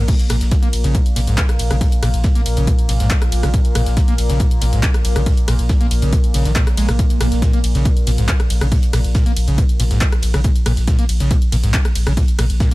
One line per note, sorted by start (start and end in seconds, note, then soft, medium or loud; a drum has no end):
0.08 0.14 A#2 medium
0.08 12.74 A#2 medium
0.08 12.74 A#3 medium
0.08 kick loud
0.08 closed hi-hat medium
0.08 closed hi-hat loud
0.08 crash medium
0.19 closed hi-hat medium
0.19 closed hi-hat soft
0.29 0.41 A#1 loud
0.29 0.36 A#2 medium
0.29 cross-stick medium
0.29 closed hi-hat medium
0.29 open hi-hat loud
0.29 ride medium
0.41 0.51 A#1 medium
0.41 snare medium
0.41 closed hi-hat medium
0.51 0.55 A#2 medium
0.51 kick loud
0.51 snare loud
0.51 closed hi-hat medium
0.51 closed hi-hat loud
0.63 0.68 A#3 medium
0.63 closed hi-hat medium
0.73 0.84 A#1 loud
0.73 closed hi-hat medium
0.73 open hi-hat loud
0.73 ride medium
0.84 0.95 A#1 medium
0.84 0.96 C#3 loud
0.84 snare medium
0.84 closed hi-hat medium
0.94 1.01 A#2 medium
0.94 kick loud
0.94 closed hi-hat loud
0.94 closed hi-hat medium
1.06 closed hi-hat medium
1.16 1.27 A#1 loud
1.16 1.20 A#2 loud
1.16 closed hi-hat medium
1.16 open hi-hat loud
1.16 ride medium
1.27 1.38 A#1 medium
1.27 1.36 G#2 medium
1.27 closed hi-hat medium
1.37 1.42 A#2 medium
1.37 kick loud
1.37 snare loud
1.37 clap loud
1.37 closed hi-hat loud
1.37 closed hi-hat medium
1.49 cross-stick medium
1.49 closed hi-hat medium
1.59 1.70 A#1 loud
1.59 closed hi-hat medium
1.59 open hi-hat loud
1.59 ride medium
1.70 1.81 A#1 medium
1.70 1.76 C#3 loud
1.70 cross-stick medium
1.70 closed hi-hat medium
1.81 1.87 A#2 medium
1.81 kick loud
1.81 closed hi-hat loud
1.81 open hi-hat medium
1.92 closed hi-hat soft
1.92 closed hi-hat medium
2.02 2.13 A#1 loud
2.02 2.09 A#2 medium
2.02 cross-stick medium
2.02 closed hi-hat medium
2.02 open hi-hat loud
2.02 ride medium
2.14 2.24 A#1 medium
2.14 closed hi-hat medium
2.24 2.28 A#2 medium
2.24 kick loud
2.24 snare loud
2.24 closed hi-hat medium
2.24 open hi-hat medium
2.35 2.41 A#3 medium
2.35 closed hi-hat medium
2.46 2.56 A#1 loud
2.46 closed hi-hat medium
2.46 open hi-hat loud
2.46 ride medium
2.57 2.67 A#1 medium
2.57 2.69 C#3 loud
2.57 closed hi-hat medium
2.67 2.73 A#2 medium
2.67 kick loud
2.67 closed hi-hat loud
2.67 closed hi-hat medium
2.79 closed hi-hat medium
2.89 2.99 A#1 loud
2.89 2.93 A#2 loud
2.89 closed hi-hat medium
2.89 open hi-hat loud
2.89 ride medium
3.00 3.10 A#1 medium
3.00 3.09 G#2 medium
3.00 snare soft
3.00 closed hi-hat medium
3.10 3.14 A#2 medium
3.10 kick loud
3.10 snare loud
3.10 clap loud
3.10 closed hi-hat medium
3.10 closed hi-hat loud
3.22 cross-stick medium
3.22 closed hi-hat medium
3.32 3.43 A#1 loud
3.32 closed hi-hat medium
3.32 open hi-hat loud
3.32 ride medium
3.43 3.53 A#1 medium
3.43 3.49 C#3 loud
3.43 cross-stick medium
3.43 snare soft
3.43 closed hi-hat medium
3.54 3.60 A#2 medium
3.54 kick loud
3.54 closed hi-hat medium
3.65 closed hi-hat soft
3.65 closed hi-hat medium
3.75 3.86 A#1 loud
3.75 3.81 A#2 medium
3.75 cross-stick loud
3.75 closed hi-hat medium
3.75 open hi-hat loud
3.75 ride medium
3.86 3.97 A#1 medium
3.86 snare medium
3.86 closed hi-hat medium
3.97 4.00 A#2 medium
3.97 kick loud
3.97 snare loud
3.97 closed hi-hat medium
3.97 closed hi-hat loud
4.08 4.14 A#3 medium
4.08 closed hi-hat medium
4.18 4.29 A#1 loud
4.18 closed hi-hat medium
4.18 open hi-hat loud
4.18 ride medium
4.29 4.40 A#1 medium
4.29 4.41 C#3 loud
4.29 snare medium
4.29 closed hi-hat medium
4.40 4.46 A#2 medium
4.40 kick loud
4.40 closed hi-hat medium
4.51 closed hi-hat medium
4.61 4.72 A#1 loud
4.61 4.65 A#2 loud
4.61 closed hi-hat medium
4.61 open hi-hat loud
4.61 ride medium
4.73 4.83 A#1 medium
4.73 4.81 G#2 medium
4.73 closed hi-hat medium
4.83 4.87 A#2 medium
4.83 kick loud
4.83 snare loud
4.83 clap loud
4.83 closed hi-hat loud
4.83 closed hi-hat medium
4.94 cross-stick medium
4.94 closed hi-hat medium
5.05 5.15 A#1 loud
5.05 closed hi-hat medium
5.05 open hi-hat loud
5.05 ride medium
5.16 5.26 A#1 medium
5.16 5.22 C#3 loud
5.16 cross-stick medium
5.16 closed hi-hat medium
5.26 5.32 A#2 medium
5.26 kick loud
5.26 closed hi-hat medium
5.26 open hi-hat medium
5.37 closed hi-hat medium
5.37 closed hi-hat soft
5.48 5.58 A#1 loud
5.48 5.54 A#2 medium
5.48 cross-stick loud
5.48 closed hi-hat medium
5.48 open hi-hat loud
5.48 ride medium
5.59 5.69 A#1 medium
5.59 closed hi-hat medium
5.69 5.73 A#2 medium
5.69 kick loud
5.69 snare loud
5.69 closed hi-hat medium
5.69 open hi-hat medium
5.81 5.86 A#3 medium
5.81 closed hi-hat medium
5.91 6.01 A#1 loud
5.91 closed hi-hat medium
5.91 open hi-hat loud
5.91 ride medium
6.02 6.12 A#1 medium
6.02 6.14 C#3 loud
6.02 closed hi-hat medium
6.13 6.19 A#2 medium
6.13 kick loud
6.13 closed hi-hat medium
6.24 closed hi-hat medium
6.34 6.45 A#1 loud
6.34 6.47 C#3 loud
6.34 closed hi-hat medium
6.34 open hi-hat loud
6.34 ride medium
6.45 6.56 A#1 medium
6.45 6.51 D#3 medium
6.45 snare soft
6.45 closed hi-hat medium
6.55 6.65 A#2 loud
6.55 kick loud
6.55 snare loud
6.55 clap loud
6.55 closed hi-hat medium
6.67 cross-stick medium
6.67 closed hi-hat medium
6.77 6.88 A#1 loud
6.77 6.87 G#3 loud
6.77 closed hi-hat medium
6.77 open hi-hat loud
6.77 ride medium
6.88 6.99 A#1 medium
6.88 6.92 A#2 loud
6.88 cross-stick medium
6.88 snare soft
6.88 closed hi-hat medium
6.99 7.05 A#2 medium
6.99 kick loud
6.99 closed hi-hat medium
7.10 closed hi-hat medium
7.10 closed hi-hat soft
7.20 7.31 A#1 loud
7.20 7.27 A#2 medium
7.20 cross-stick loud
7.20 closed hi-hat medium
7.20 open hi-hat loud
7.20 ride medium
7.32 7.42 A#1 medium
7.32 snare medium
7.32 closed hi-hat medium
7.42 7.51 A#2 medium
7.42 kick loud
7.42 snare loud
7.42 closed hi-hat medium
7.42 closed hi-hat loud
7.53 7.59 A#3 medium
7.53 closed hi-hat medium
7.64 7.74 A#1 loud
7.64 closed hi-hat medium
7.64 open hi-hat loud
7.64 ride medium
7.75 7.85 A#1 medium
7.75 7.87 C#3 loud
7.75 snare medium
7.75 closed hi-hat medium
7.85 7.91 A#2 medium
7.85 kick loud
7.85 closed hi-hat medium
7.97 closed hi-hat soft
8.07 8.17 A#1 loud
8.07 8.11 A#2 loud
8.07 closed hi-hat medium
8.07 open hi-hat loud
8.07 ride medium
8.18 8.28 A#1 medium
8.18 8.27 G#2 medium
8.18 closed hi-hat medium
8.28 8.32 A#2 medium
8.28 kick loud
8.28 snare loud
8.28 clap loud
8.28 closed hi-hat medium
8.40 cross-stick medium
8.40 closed hi-hat medium
8.50 8.61 A#1 loud
8.50 closed hi-hat medium
8.50 open hi-hat loud
8.50 ride medium
8.61 8.71 A#1 medium
8.61 8.67 C#3 loud
8.61 cross-stick loud
8.61 closed hi-hat medium
8.71 8.78 A#2 medium
8.71 kick loud
8.71 closed hi-hat medium
8.71 open hi-hat medium
8.83 closed hi-hat medium
8.83 closed hi-hat soft
8.93 9.04 A#1 loud
8.93 8.99 A#2 medium
8.93 cross-stick loud
8.93 closed hi-hat medium
8.93 open hi-hat loud
8.93 ride medium
9.04 9.15 A#1 medium
9.04 closed hi-hat soft
9.15 9.24 A#2 medium
9.15 kick loud
9.15 snare loud
9.15 closed hi-hat medium
9.15 open hi-hat medium
9.26 9.32 A#3 medium
9.26 closed hi-hat medium
9.36 9.47 A#1 loud
9.36 closed hi-hat medium
9.36 open hi-hat loud
9.36 ride medium
9.48 9.58 A#1 medium
9.48 9.60 C#3 loud
9.48 closed hi-hat medium
9.58 9.64 A#2 medium
9.58 kick loud
9.58 closed hi-hat medium
9.69 closed hi-hat medium
9.80 9.90 A#1 loud
9.80 9.83 A#2 loud
9.80 closed hi-hat medium
9.80 open hi-hat loud
9.80 ride medium
9.91 10.01 A#1 medium
9.91 9.99 G#2 medium
9.91 snare soft
9.91 closed hi-hat medium
10.01 10.05 A#2 medium
10.01 kick loud
10.01 snare loud
10.01 clap loud
10.01 closed hi-hat medium
10.12 cross-stick medium
10.12 closed hi-hat medium
10.22 10.33 A#1 loud
10.22 closed hi-hat medium
10.22 open hi-hat loud
10.22 ride medium
10.34 10.44 A#1 medium
10.34 10.40 C#3 loud
10.34 cross-stick loud
10.34 snare soft
10.34 closed hi-hat medium
10.44 10.50 A#2 medium
10.44 kick loud
10.44 closed hi-hat medium
10.56 closed hi-hat medium
10.56 closed hi-hat soft
10.66 10.77 A#1 loud
10.66 10.72 A#2 medium
10.66 cross-stick loud
10.66 closed hi-hat medium
10.66 open hi-hat loud
10.66 ride medium
10.76 10.87 A#1 medium
10.76 snare medium
10.76 closed hi-hat medium
10.87 10.97 A#2 medium
10.87 kick loud
10.87 snare loud
10.87 closed hi-hat medium
10.99 11.04 A#3 medium
10.99 closed hi-hat medium
11.09 11.20 A#1 loud
11.09 closed hi-hat medium
11.09 open hi-hat loud
11.09 ride medium
11.20 11.30 A#1 medium
11.20 11.32 C#3 loud
11.20 snare medium
11.20 closed hi-hat medium
11.31 11.37 A#2 medium
11.31 kick loud
11.31 closed hi-hat medium
11.42 closed hi-hat medium
11.52 11.63 A#1 loud
11.52 11.56 A#2 loud
11.52 closed hi-hat medium
11.52 open hi-hat loud
11.52 ride medium
11.63 11.74 A#1 medium
11.63 11.72 G#2 medium
11.63 closed hi-hat medium
11.73 11.78 A#2 medium
11.73 kick loud
11.73 snare loud
11.73 clap loud
11.73 closed hi-hat medium
11.85 cross-stick medium
11.85 closed hi-hat medium
11.95 12.06 A#1 loud
11.95 closed hi-hat medium
11.95 open hi-hat loud
11.95 ride medium
12.07 12.17 A#1 medium
12.07 12.12 C#3 loud
12.07 cross-stick loud
12.07 closed hi-hat medium
12.17 12.23 A#2 medium
12.17 kick loud
12.17 closed hi-hat loud
12.17 open hi-hat medium
12.28 closed hi-hat soft
12.28 closed hi-hat medium
12.39 12.49 A#1 loud
12.39 12.45 A#2 medium
12.39 cross-stick loud
12.39 closed hi-hat medium
12.39 open hi-hat loud
12.39 ride medium
12.50 12.60 A#1 medium
12.50 closed hi-hat medium
12.60 12.69 A#2 medium
12.60 kick loud
12.60 snare loud
12.60 closed hi-hat medium
12.60 open hi-hat medium